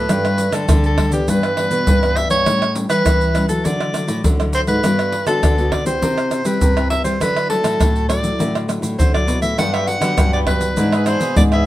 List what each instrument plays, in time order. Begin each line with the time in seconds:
Already playing: soprano saxophone B4
0.09 nylon-string guitar G2 G3 A3 D4, pandeiro, tamborim, shaker, surdo
0.25 pandeiro, tamborim, shaker
0.38 nylon-string guitar G3 A3 D4, pandeiro, shaker
0.52 nylon-string guitar D3 G3 A3 D4, soprano saxophone A4, pandeiro, tamborim, shaker
0.69 nylon-string guitar D3, pandeiro, tamborim, shaker, surdo
0.84 soprano saxophone A4, pandeiro, shaker
0.98 nylon-string guitar G3 A3 D4, pandeiro, tamborim, surdo
1.12 nylon-string guitar E3 B3 D4, soprano saxophone G4, pandeiro, shaker
1.28 nylon-string guitar G2, soprano saxophone B4, pandeiro, shaker, surdo
1.43 pandeiro, tamborim, shaker
1.57 nylon-string guitar E3 B3 D4, pandeiro, tamborim
1.71 nylon-string guitar B2, pandeiro, shaker
1.87 nylon-string guitar G2, pandeiro, shaker, surdo
2.03 nylon-string guitar E3 B3 D4, pandeiro, tamborim, shaker
2.16 soprano saxophone E5, pandeiro
2.30 nylon-string guitar G2, soprano saxophone C#5, pandeiro, shaker
2.46 nylon-string guitar A2 G3 C#4 E4, pandeiro, tamborim, shaker, surdo
2.62 pandeiro, tamborim, shaker
2.75 nylon-string guitar G3 C#4 E4, pandeiro, shaker
2.89 nylon-string guitar E3 G3 C#4 E4, soprano saxophone B4, pandeiro, tamborim, shaker
3.05 nylon-string guitar E3, pandeiro, tamborim, shaker, surdo
3.21 pandeiro, shaker
3.35 nylon-string guitar G3 C#4 E4, pandeiro, tamborim, shaker
3.48 nylon-string guitar F#3 A3 E4, soprano saxophone A4, pandeiro, shaker
3.65 nylon-string guitar D3, soprano saxophone D5, pandeiro, shaker, surdo
3.80 pandeiro, tamborim, shaker
3.94 nylon-string guitar F#3 A3 E4, pandeiro, tamborim, shaker
4.08 nylon-string guitar A2, pandeiro, shaker
4.24 nylon-string guitar A2 D3 F#3 A3 E4, pandeiro, shaker, surdo
4.40 nylon-string guitar F#3 A3 E4, pandeiro, tamborim, shaker
4.53 soprano saxophone C5, pandeiro, shaker
4.67 nylon-string guitar G#2, soprano saxophone B4, pandeiro, shaker
4.83 nylon-string guitar G2 G3 B3 D4 F#4, pandeiro, tamborim, shaker, surdo
4.99 pandeiro, tamborim, shaker
5.12 pandeiro
5.26 nylon-string guitar D3 B3 D4 F#4, soprano saxophone A4, pandeiro, tamborim, shaker
5.43 nylon-string guitar D3, pandeiro, tamborim, shaker, surdo
5.58 nylon-string guitar B3 D4 F#4, pandeiro, shaker
5.72 soprano saxophone D5, pandeiro, tamborim, surdo
5.86 nylon-string guitar C4 E4 G4, soprano saxophone C5, pandeiro, shaker
6.02 nylon-string guitar C3, pandeiro, shaker, surdo
6.18 pandeiro, tamborim, shaker
6.31 pandeiro, tamborim, shaker
6.45 nylon-string guitar G3 C4 E4 G4, soprano saxophone B4, pandeiro, shaker
6.61 nylon-string guitar G2 C3, pandeiro, shaker, surdo
6.77 nylon-string guitar C4 E4 G4, pandeiro, tamborim, shaker
6.90 soprano saxophone E5, pandeiro
7.04 nylon-string guitar G3, soprano saxophone C5, pandeiro, shaker
7.20 nylon-string guitar D3 F#3 A3 E4, soprano saxophone B4, pandeiro, tamborim, shaker, surdo
7.36 pandeiro, tamborim, shaker
7.50 nylon-string guitar F#3 A3 E4, soprano saxophone A4, pandeiro
7.63 nylon-string guitar A2 F#3 A3 E4, pandeiro, tamborim, shaker
7.79 nylon-string guitar A2, pandeiro, tamborim, shaker, surdo
7.96 pandeiro, shaker
8.09 nylon-string guitar F#3 A3 E4, soprano saxophone D5, pandeiro, tamborim, shaker
8.23 nylon-string guitar F#3 A3 E4, pandeiro, shaker
8.39 nylon-string guitar A2 D3, pandeiro, shaker, surdo
8.55 pandeiro, tamborim, shaker
8.68 nylon-string guitar F#3 A3 E4, pandeiro, tamborim, shaker
8.82 nylon-string guitar A2, pandeiro, shaker
8.98 nylon-string guitar A2 D3, soprano saxophone C5, pandeiro, shaker, surdo
9.14 nylon-string guitar F#3 A3 E4, soprano saxophone D5, pandeiro, tamborim, shaker
9.27 nylon-string guitar B2, pandeiro, shaker
9.42 nylon-string guitar A2, soprano saxophone E5, pandeiro, shaker
9.58 nylon-string guitar G2 F#3 B3 D4, cavaquinho D4 G4 B4 F#5, soprano saxophone F#5, pandeiro, tamborim, shaker, surdo
9.73 cavaquinho G4 B4 F#5, soprano saxophone E5, pandeiro, tamborim, shaker
9.87 soprano saxophone F#5, muted cavaquinho stroke, pandeiro
10.01 nylon-string guitar D3 F#3 B3 D4, cavaquinho G4 B4 F#5, pandeiro, tamborim, shaker
10.17 nylon-string guitar G2 D3, cavaquinho D4 G4 B4 F#5, pandeiro, tamborim, shaker, surdo
10.33 cavaquinho G4 B4 F#5, soprano saxophone D5, pandeiro, shaker
10.47 nylon-string guitar F#3 B3 D4, soprano saxophone B4, pandeiro, tamborim, surdo
10.61 muted cavaquinho stroke, pandeiro, shaker
10.77 nylon-string guitar G#2 E3 B3 D4, cavaquinho D4 G#4 B4 E5, pandeiro, shaker, surdo
10.92 cavaquinho G#4 B4 E5, pandeiro, tamborim, shaker
11.06 nylon-string guitar E3 B3 D4, cavaquinho D4 G#4 B4 E5, soprano saxophone C5, pandeiro, tamborim, shaker
11.20 nylon-string guitar B2, cavaquinho G#4 B4 E5, pandeiro, shaker
11.36 nylon-string guitar G#2 E3 B3 D4, soprano saxophone D5, pandeiro, shaker, surdo
11.52 nylon-string guitar E3 B3 D4, cavaquinho G#4 B4 E5, soprano saxophone E5, pandeiro, tamborim, shaker